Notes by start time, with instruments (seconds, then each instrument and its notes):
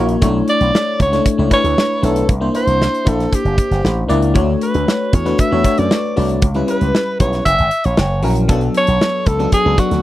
Already playing: slap bass A#1, fm electric piano A#3 E4 F#4 C#5
0.09 closed hi-hat
0.21 slap bass B1, fm electric piano A3 D4 E4 C#5, kick, closed hi-hat
0.48 alto saxophone D5, closed hi-hat
0.61 slap bass B1, closed hi-hat
0.75 snare
1.00 slap bass C#2, alto saxophone C#5, kick, closed hi-hat
1.12 fm electric piano A3 D4 E4 C#5, snare, closed hi-hat
1.26 kick, closed hi-hat
1.38 slap bass C#2, fm electric piano A3 D4 E4 C#5
1.50 fm electric piano A3 D4 E4 B4, alto saxophone C#5, kick, closed hi-hat
1.64 slap bass D2, closed hi-hat
1.78 snare
2.02 slap bass B1, fm electric piano A3 D4 E4 C#5, alto saxophone A4, closed hi-hat
2.16 closed hi-hat
2.29 slap bass C2, kick, closed hi-hat
2.41 fm electric piano A#3 D4 E4 C5
2.54 fm electric piano A#3 D4 E4 C5, alto saxophone C5, closed hi-hat
2.67 slap bass C2, closed hi-hat
2.82 snare
2.95 closed hi-hat
3.05 slap bass A#1, fm electric piano A#3 D4 E4 C5, alto saxophone A4, kick, closed hi-hat
3.20 snare, closed hi-hat
3.33 alto saxophone G4, kick, closed hi-hat
3.45 slap bass F#1, closed hi-hat
3.58 kick, closed hi-hat
3.71 slap bass G1, snare, closed hi-hat
3.84 slap bass A1, snare
4.08 slap bass C#2, fm electric piano A#3 D4 E4 D5, closed hi-hat
4.22 closed hi-hat
4.34 slap bass D2, fm electric piano A3 D4 F#4 C#5, kick, closed hi-hat
4.61 alto saxophone B4, closed hi-hat
4.74 slap bass D2, closed hi-hat
4.88 snare
5.13 slap bass E2, alto saxophone C#5, kick, closed hi-hat
5.25 fm electric piano A3 D4 F#4 B4, snare, closed hi-hat
5.38 alto saxophone E5, kick, closed hi-hat
5.51 slap bass E2, fm electric piano A3 D4 F#4 C#5
5.64 fm electric piano A3 D4 F#4 C#5, kick, closed hi-hat
5.78 slap bass F#2, alto saxophone D5, closed hi-hat
5.91 snare
6.16 slap bass C2, fm electric piano A3 D4 F#4 D5, open hi-hat
6.29 closed hi-hat
6.42 slap bass C#2, kick, closed hi-hat
6.54 fm electric piano G3 C#4 E4 B4, closed hi-hat
6.67 fm electric piano G3 C#4 E4 B4, alto saxophone B4, closed hi-hat
6.81 slap bass C#2, closed hi-hat
6.95 snare
7.19 slap bass B1, fm electric piano G3 C#4 E4 B4, alto saxophone C#5, kick, closed hi-hat
7.33 snare, closed hi-hat
7.45 slap bass F#1, alto saxophone E5, kick, closed hi-hat
7.59 slap bass G#1, closed hi-hat
7.71 closed hi-hat
7.84 slap bass A#1, alto saxophone C#5, closed hi-hat
7.97 slap bass F#1, snare
8.23 slap bass A#1, fm electric piano F#3 C#4 E4 A#4, open hi-hat
8.36 closed hi-hat
8.48 slap bass B1, fm electric piano F#3 B3 D4 A4, kick, closed hi-hat
8.61 closed hi-hat
8.74 alto saxophone C#5, closed hi-hat
8.87 slap bass B1, closed hi-hat
9.01 snare
9.26 slap bass C#2, alto saxophone A4, kick, closed hi-hat
9.39 fm electric piano F#3 B3 D4 A4, closed hi-hat
9.52 alto saxophone G#4, kick, closed hi-hat
9.65 slap bass C#2, fm electric piano F#3 B3 D4 A4
9.77 fm electric piano F#3 B3 D4 F#4, alto saxophone F#4, kick, closed hi-hat
9.91 slap bass D2, snare, closed hi-hat